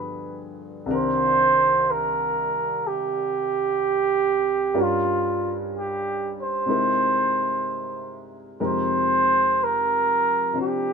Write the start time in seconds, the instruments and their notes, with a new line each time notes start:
Already playing: grand piano G2 D3 F3 B3 G#4, flugelhorn B4
0.86 grand piano C2 C3 D#3 D4
0.91 grand piano A#4
0.96 flugelhorn C5
1.91 flugelhorn A#4
2.87 flugelhorn G4
4.74 grand piano G2 G3 C#4 F4 A#4
4.82 flugelhorn F4
5.77 flugelhorn G4
6.42 flugelhorn C5
6.66 grand piano C3 G#3 D#4 E4
6.70 grand piano A#4
8.60 grand piano F2 C3 G#3 D#4 G4 A#4
8.66 flugelhorn C5
9.64 flugelhorn A#4
10.53 grand piano C3 F3 D4 F4 C5
10.61 flugelhorn G4